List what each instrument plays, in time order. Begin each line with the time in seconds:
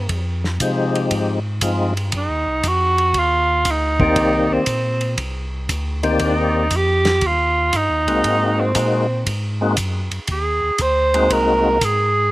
Already playing: tenor saxophone C4
0.09 tonewheel organ F2, kick, ride
0.44 snare
0.60 tonewheel organ C3 F3 G#3 C4 D#4 G4, kick, hi-hat pedal, ride
0.95 ride
1.10 tonewheel organ G#2, kick, ride
1.61 tonewheel organ G2 F3 G#3 C4 D#4 F4, kick, hi-hat pedal, ride
1.97 ride
2.12 tonewheel organ F#2, kick, ride
2.17 tenor saxophone D#4
2.29 tonewheel organ D#2
2.45 tonewheel organ C2
2.63 tonewheel organ F2, kick, hi-hat pedal, ride
2.68 tenor saxophone F#4
2.98 ride
3.14 tonewheel organ D#2, kick, ride
3.19 tenor saxophone F4
3.65 tonewheel organ D2, kick, hi-hat pedal, ride
3.71 tenor saxophone D#4
4.00 tonewheel organ D#3 A#3 C4 G4 D5, kick
4.16 tonewheel organ C2, kick, ride
4.50 tonewheel organ C2, tenor saxophone C4
4.66 tonewheel organ A#2, kick, hi-hat pedal, ride
5.01 ride
5.18 tonewheel organ C2, kick, ride
5.69 tonewheel organ D2, kick, hi-hat pedal, ride
6.03 tonewheel organ D#3 A#3 C4 G4 D5, ride
6.19 tonewheel organ D#2, kick, ride
6.24 tenor saxophone D#4
6.71 tonewheel organ F2, kick, hi-hat pedal, ride
6.76 tenor saxophone G4
7.05 snare, ride
7.21 tonewheel organ D#2, kick, ride
7.27 tenor saxophone F4
7.73 tonewheel organ G2, tenor saxophone D#4, kick, hi-hat pedal, ride
7.90 tonewheel organ D#2
8.06 tonewheel organ C2 G#3 A#3 C4 D#4 F#4, ride
8.24 tonewheel organ G#2, kick, ride
8.60 tenor saxophone C4
8.75 tonewheel organ A#2 G#3 A#3 C4 D#4 F#4, kick, hi-hat pedal, ride
9.26 tonewheel organ G#2, kick, ride
9.61 tonewheel organ G#3 A#3 C4 D#4 F#4
9.77 tonewheel organ F#2, kick, hi-hat pedal, ride
10.11 tonewheel organ F#2, ride
10.27 tonewheel organ D#2, kick, ride
10.32 tenor saxophone G#4
10.62 tonewheel organ D#2
10.78 tonewheel organ D2, tenor saxophone C5, kick, hi-hat pedal, ride
11.14 tonewheel organ G#3 A#3 C4 D#4 F#4, ride
11.30 tonewheel organ C2, tenor saxophone A#4, kick, ride
11.81 tonewheel organ G#2, tenor saxophone G#4, kick, hi-hat pedal, ride